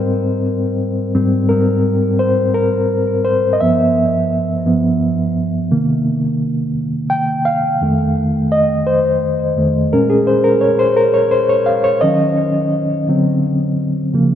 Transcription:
0.00 0.40 G#2 medium
0.00 0.40 G3 medium
0.00 0.41 C4 medium
0.00 1.49 A#4 medium
0.00 1.10 C5 medium
1.15 1.46 G#2 soft
1.15 1.46 G3 soft
1.15 1.46 C4 medium
1.49 2.51 G#2 soft
1.49 2.51 G3 soft
1.49 2.51 C4 soft
1.49 2.15 A#4 medium
2.19 2.55 C5 medium
2.54 3.27 A#4 medium
3.25 3.53 C5 medium
3.53 3.60 D#5 medium
3.60 4.64 G2 soft
3.60 4.65 F3 soft
3.60 4.66 B3 soft
3.60 4.35 E5 medium
4.65 4.97 G2 soft
4.65 4.97 F3 soft
4.65 4.98 B3 soft
5.71 6.72 C3 soft
5.71 6.72 D#3 soft
5.71 6.72 A#3 medium
7.10 7.46 G5 medium
7.45 8.12 F5 medium
7.81 8.28 F2 soft
7.81 8.28 D#3 soft
7.81 8.29 A3 medium
8.52 8.87 D#5 medium
8.87 9.61 C5 medium
9.57 9.88 F2 soft
9.57 9.89 D#3 soft
9.57 9.89 A3 soft
9.93 10.93 A#2 soft
9.93 10.94 G#3 soft
9.93 10.94 C#4 medium
9.93 10.10 A#4 medium
10.10 10.27 G#4 medium
10.27 10.43 C5 medium
10.44 10.62 A#4 medium
10.61 10.69 C#5 medium
10.79 10.97 C5 medium
10.97 11.13 A#4 medium
11.14 11.22 C#5 medium
11.31 11.48 C5 medium
11.49 11.67 C#5 medium
11.66 11.83 F5 medium
11.84 12.00 C#5 medium
12.01 12.49 D#3 soft
12.01 12.49 F#3 soft
12.01 12.49 C#4 medium
12.01 12.76 D#5 medium
13.09 13.54 D3 soft
13.09 13.55 F#3 soft
13.09 13.55 C4 medium
14.14 14.35 C#3 soft
14.14 14.35 F3 soft
14.14 14.35 A#3 medium

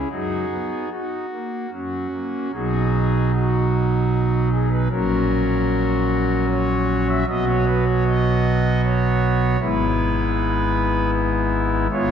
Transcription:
0.10 0.45 F#2 medium
0.10 0.45 F#3 medium
0.10 0.90 D#4 soft
0.10 0.89 F#4 soft
0.10 0.89 G#4 loud
0.51 0.86 B3 medium
0.91 1.26 D#4 medium
0.91 1.70 F#4 medium
1.32 1.67 A#3 medium
1.72 2.07 F#2 medium
1.72 2.07 F#3 medium
1.72 2.51 C#4 soft
1.72 2.51 F#4 soft
2.13 2.48 A#3 soft
2.53 4.88 B1 medium
2.53 4.88 B2 medium
2.53 4.88 F#3 medium
2.53 4.88 D#4 soft
2.53 3.32 F#4 medium
2.53 3.31 G#4 loud
3.34 4.49 F#4 medium
4.52 4.69 G#4 medium
4.71 4.88 B4 medium
4.91 7.24 A#1 medium
4.91 7.24 A#2 medium
4.91 7.24 F#3 medium
4.91 7.24 C#4 medium
4.91 7.24 F#4 soft
4.91 6.46 A#4 loud
6.49 7.07 C#5 medium
7.08 7.25 E5 loud
7.28 9.57 B1 medium
7.28 9.57 B2 medium
7.28 9.57 F#3 medium
7.28 9.57 B3 medium
7.28 9.57 F#4 medium
7.28 7.45 D#5 loud
7.49 7.65 C#5 loud
7.68 7.84 B4 loud
7.88 8.04 C#5 medium
8.06 8.81 D#5 loud
8.84 9.59 C#5 loud
9.60 11.87 G#1 medium
9.60 11.87 G#2 medium
9.60 11.87 G#3 medium
9.60 11.87 B3 medium
9.60 11.87 E4 medium
9.60 11.11 B4 loud
11.91 12.11 G#1 medium
11.91 12.11 G#2 medium
11.91 12.11 G#3 medium
11.91 12.11 B3 medium
11.91 12.11 F4 medium
11.91 12.11 C#5 loud

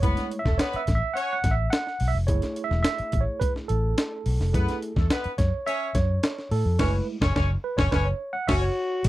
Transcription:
0.00 0.14 F#1 loud
0.00 0.40 G#3 medium
0.00 0.40 A3 soft
0.00 0.25 B3 loud
0.00 0.41 E4 medium
0.00 0.25 B4 loud
0.00 0.42 C#5 loud
0.00 kick loud
0.00 closed hi-hat medium
0.17 snare soft
0.17 closed hi-hat medium
0.31 closed hi-hat medium
0.39 0.59 E5 loud
0.45 0.57 E1 medium
0.45 0.56 A3 medium
0.45 0.56 A4 medium
0.45 kick loud
0.45 snare soft
0.58 0.82 B3 loud
0.58 0.82 B4 loud
0.58 0.78 C#5 medium
0.58 snare loud
0.58 closed hi-hat loud
0.73 0.94 E5 loud
0.73 muted fingered electric bass stroke soft
0.73 closed hi-hat soft
0.87 0.99 A1 medium
0.87 kick medium
0.87 snare soft
0.87 closed hi-hat medium
0.95 1.15 E5 medium
1.14 1.38 C#4 medium
1.14 1.38 C#5 loud
1.14 1.31 F#5 loud
1.14 closed hi-hat medium
1.33 1.53 F#5 loud
1.44 1.67 A1 medium
1.44 kick medium
1.44 snare soft
1.44 closed hi-hat medium
1.51 1.72 E5 loud
1.70 2.10 F#5 loud
1.70 snare loud
1.70 closed hi-hat loud
1.87 snare soft
2.00 2.12 B1 medium
2.00 open hi-hat medium
2.08 2.17 E5 loud
2.15 2.28 F1 medium
2.27 2.40 F#1 loud
2.27 4.50 A3 soft
2.27 4.50 E4 medium
2.27 4.50 G#4 medium
2.27 2.63 C#5 loud
2.27 kick loud
2.27 closed hi-hat medium
2.42 snare soft
2.42 closed hi-hat medium
2.56 closed hi-hat medium
2.64 2.81 E5 loud
2.71 2.82 E1 medium
2.71 snare soft
2.83 3.23 E5 loud
2.83 snare loud
2.83 closed hi-hat loud
2.98 muted fingered electric bass stroke medium
2.98 closed hi-hat soft
3.12 3.25 A1 medium
3.12 kick medium
3.12 closed hi-hat medium
3.21 3.41 C#5 medium
3.40 3.53 B4 medium
3.40 kick medium
3.40 closed hi-hat medium
3.56 snare soft
3.68 3.93 A1 medium
3.68 5.06 A4 medium
3.68 closed hi-hat medium
3.98 snare loud
3.98 closed hi-hat loud
4.26 4.37 B1 medium
4.26 open hi-hat medium
4.40 4.52 F1 medium
4.40 snare soft
4.53 4.66 F#2 loud
4.53 4.92 A3 soft
4.53 4.76 B3 medium
4.53 4.92 E4 medium
4.53 4.91 G#4 medium
4.53 4.76 B4 loud
4.53 kick loud
4.53 closed hi-hat medium
4.69 snare soft
4.69 closed hi-hat medium
4.82 closed hi-hat medium
4.96 5.08 E2 medium
4.96 5.07 A3 medium
4.96 5.07 A4 medium
4.96 kick loud
4.96 snare soft
5.10 5.33 B3 medium
5.10 5.33 B4 loud
5.10 snare loud
5.10 closed hi-hat loud
5.24 muted fingered electric bass stroke medium
5.24 closed hi-hat soft
5.38 5.50 F#2 medium
5.38 5.67 C#5 loud
5.38 kick medium
5.38 snare soft
5.38 closed hi-hat medium
5.66 5.89 C#4 loud
5.66 5.89 C#5 loud
5.66 5.96 E5 loud
5.66 closed hi-hat medium
5.95 6.18 F#2 loud
5.95 6.53 C#5 loud
5.95 kick medium
5.95 snare soft
5.95 closed hi-hat medium
6.23 snare loud
6.23 closed hi-hat medium
6.39 snare soft
6.51 6.63 A2 medium
6.51 6.80 A4 medium
6.51 open hi-hat medium
6.65 6.77 F2 medium
6.79 6.99 F#1 loud
6.79 7.17 G#3 medium
6.79 7.17 A3 medium
6.79 6.94 C#4 medium
6.79 7.17 E4 medium
6.79 7.06 B4 medium
6.79 6.94 C#5 medium
6.79 kick loud
6.79 snare loud
6.79 crash medium
7.21 7.34 F#1 loud
7.21 7.30 C#4 medium
7.21 7.30 C#5 loud
7.21 kick loud
7.21 snare loud
7.35 7.55 F#1 loud
7.35 7.50 C#4 loud
7.35 7.50 C#5 loud
7.35 kick loud
7.35 snare loud
7.64 7.79 B4 medium
7.77 7.90 F#1 loud
7.77 7.87 C#4 loud
7.77 7.92 C#5 medium
7.77 7.87 C#5 loud
7.77 kick loud
7.77 snare loud
7.91 8.11 F#1 loud
7.91 8.07 C#4 loud
7.91 8.06 B4 loud
7.91 8.06 C#5 loud
7.91 kick loud
7.91 snare loud
8.05 8.35 C#5 medium
8.33 8.47 F#5 loud
8.48 8.68 F#1 loud
8.48 8.63 C#4 loud
8.48 9.08 F#4 medium
8.48 8.63 C#5 loud
8.48 8.54 E5 loud
8.48 kick loud
8.48 snare loud
8.48 crash medium
8.61 9.01 C#5 medium
9.04 9.09 B1 loud
9.04 9.09 B2 medium
9.04 9.09 F#3 medium
9.04 kick loud
9.04 closed hi-hat medium
9.04 crash loud

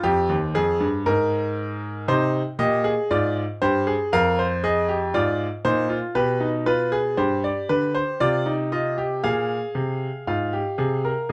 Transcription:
0.00 0.29 F2 medium
0.00 0.35 G4 loud
0.00 2.04 C5 medium
0.29 0.54 D#2 medium
0.55 0.80 F2 medium
0.55 0.87 G#4 medium
0.80 1.05 G2 medium
1.06 2.05 G#2 medium
1.06 2.05 A#4 medium
2.08 2.40 C3 medium
2.08 2.40 D#4 medium
2.08 2.40 C5 medium
2.59 2.91 A#2 medium
2.59 2.84 G4 medium
2.59 2.91 D#5 medium
2.84 3.10 G#4 medium
3.11 3.42 G#2 medium
3.11 3.42 F4 medium
3.11 3.42 D5 medium
3.62 3.93 G2 medium
3.62 3.87 G4 medium
3.62 3.93 C5 medium
3.87 4.12 G#4 medium
4.13 5.11 F2 medium
4.13 4.38 A#4 medium
4.13 4.44 F5 medium
4.39 4.63 C5 medium
4.64 4.88 G#4 medium
4.64 4.95 D#5 medium
4.89 5.13 G4 medium
5.14 5.46 G#2 medium
5.14 5.46 F4 medium
5.14 5.46 D5 medium
5.65 5.96 A#2 medium
5.65 5.89 D#4 medium
5.65 5.96 C5 medium
5.89 6.14 F4 medium
6.15 7.15 B2 medium
6.15 6.40 G4 medium
6.15 6.47 B4 medium
6.40 6.66 D#4 medium
6.66 6.92 F4 medium
6.66 6.98 B4 medium
6.92 7.17 G#4 medium
7.17 7.50 G2 medium
7.17 8.17 G4 medium
7.17 7.43 C5 medium
7.44 7.69 D5 medium
7.69 8.01 D3 medium
7.69 7.94 B4 medium
7.95 8.20 C5 medium
8.20 9.21 C3 medium
8.20 8.46 F4 medium
8.20 8.52 D5 medium
8.46 8.71 D#4 medium
8.72 8.97 F4 medium
8.72 9.04 D#5 medium
8.98 9.23 G4 medium
9.24 9.56 A#2 medium
9.24 10.24 G#4 medium
9.24 10.24 F5 medium
9.75 10.07 C3 medium
10.27 10.59 G#2 medium
10.27 10.52 F4 medium
10.27 11.27 F5 medium
10.53 10.78 G4 medium
10.78 11.10 C3 medium
10.78 11.03 G#4 medium
11.05 11.29 A#4 medium

